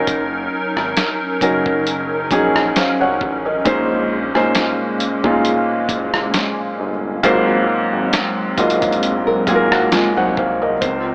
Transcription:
Already playing: felt piano F#3 C#4 D#4 A#4, analog synth pad F#3 C#4 D#4 A#4
0.07 analog synth bass F#1, kick, closed hi-hat
0.76 analog synth bass G#1, cross-stick
0.97 snare, closed hi-hat
1.41 analog synth bass F#1, felt piano F#3 C#4 D#4 A#4, kick, closed hi-hat
1.66 kick
1.87 closed hi-hat
2.31 analog synth bass A#1, felt piano F#3 C#4 D#4 G#4, kick, closed hi-hat
2.56 cross-stick
2.76 felt piano C5 F5, snare, closed hi-hat
3.00 analog synth bass C2, felt piano C#5 F#5
3.21 analog synth bass A1, kick
3.46 felt piano A#4 D#5
3.65 analog synth bass A#1, felt piano A#2 G#3 C#4 D#4 C5, analog synth pad G#3 A#3, kick, closed hi-hat
4.34 analog synth bass G#1, felt piano A#2 G#3 C#4 D#4 C5, cross-stick
4.55 snare, closed hi-hat
5.00 analog synth bass G#1, closed hi-hat
5.24 analog synth bass G#1, felt piano A#2 G#3 C#4 D#4 F4, kick
5.45 closed hi-hat
5.89 analog synth bass F#1, kick, closed hi-hat
6.14 cross-stick
6.34 snare, closed hi-hat
6.79 analog synth bass G1
7.23 analog synth bass G#1, felt piano G#2 F#3 A#3 F4 C5, analog synth pad F#3 G#3 C4, kick, closed hi-hat
7.93 analog synth bass G#1
8.13 snare, closed hi-hat
8.58 analog synth bass A#1, felt piano G#2 F#3 A#3 F4 D#5, kick, closed hi-hat
8.70 closed hi-hat
8.82 kick, closed hi-hat
8.92 closed hi-hat
9.03 closed hi-hat
9.27 nylon-string guitar A#4
9.47 analog synth bass G#1, felt piano G#2 F#3 A#3 F4 G#4, nylon-string guitar C4 G#4, kick, closed hi-hat
9.55 felt piano A#4
9.72 nylon-string guitar A#3 F#4, cross-stick
9.92 nylon-string guitar G#3 F4, felt piano D#5 G#5, snare, closed hi-hat
10.16 analog synth bass C2, nylon-string guitar F#3 D#4, felt piano C5 F#5
10.37 analog synth bass C2, felt piano C5 F5, kick
10.62 felt piano A#4 D#5
10.81 analog synth bass C#2, analog synth pad C3 C4 D#4 F4 A#4, felt piano C4 C5, kick, closed hi-hat

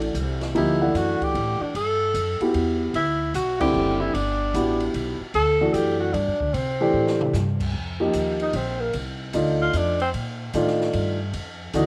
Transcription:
Already playing: upright bass A1, upright piano E3 A3 D4 F#4, tenor saxophone D4
0.02 ride
0.14 upright bass C2, hi-hat pedal, ride
0.41 snare, ride
0.55 upright bass D2, upright piano F3 A#3 D#4 G4, tenor saxophone E4, ride
0.81 upright piano E3 A3 D4 F#5
0.94 upright bass F#2, tenor saxophone F#4, hi-hat pedal, ride
1.21 tenor saxophone G4, muted upright bass stroke, kick, ride
1.34 upright bass A2, ride
1.61 tenor saxophone D4, muted upright bass stroke
1.74 upright bass G2, tenor saxophone A4, ride
2.14 upright bass F#2, hi-hat pedal, ride
2.40 upright piano B3 E4 F#4 G4, muted upright bass stroke, ride
2.54 upright bass E2, ride
2.94 upright bass D2, tenor saxophone E4, ride
3.34 upright bass B1, tenor saxophone F#4, hi-hat pedal, ride
3.60 upright piano D3 G3 C4 E4, tenor saxophone G4, kick, crash
3.74 upright bass F#1
4.01 tenor saxophone E4
4.14 upright bass G1, tenor saxophone D4, ride
4.54 upright bass A1, upright piano B3 E4 F#4 G4, hi-hat pedal, ride
4.80 ride
4.94 upright bass B1, ride
5.20 muted upright bass stroke
5.34 upright bass D2, tenor saxophone A4, ride
5.61 upright piano E3 A3 D4 F#4
5.73 upright bass F#2, tenor saxophone G4, hi-hat pedal, ride
6.00 tenor saxophone F#4
6.14 upright bass G2, tenor saxophone D4, ride
6.28 upright bass F#2
6.40 upright bass D2, kick
6.54 upright bass C3, tenor saxophone C4, ride
6.81 upright piano E3 A3 D4 G4
6.93 upright bass A2
7.07 snare
7.21 mid tom
7.33 upright bass G2, snare, hi-hat pedal
7.60 kick, crash
7.73 upright bass F2
8.00 upright piano F3 A#3 D#4 G4
8.13 upright bass D#2, hi-hat pedal, ride
8.40 tenor saxophone D#4, ride
8.53 upright bass A#1, tenor saxophone C4, ride
8.80 tenor saxophone A#3
8.93 upright bass C2, ride
9.33 upright bass D2, upright piano A3 D4 D#4 F4, hi-hat pedal, ride
9.62 tenor saxophone F4
9.73 upright bass F2, tenor saxophone D4, hi-hat pedal, ride
10.00 tenor saxophone C4, ride
10.14 upright bass A#2, ride
10.54 upright bass A2, upright piano D#3 A3 D4 F4, hi-hat pedal, ride
10.67 snare
10.81 snare
10.93 upright bass G2, ride
11.33 upright bass F2, ride
11.73 upright bass D2, upright piano E3 A3 D4 F#4, tenor saxophone D#4, hi-hat pedal, ride

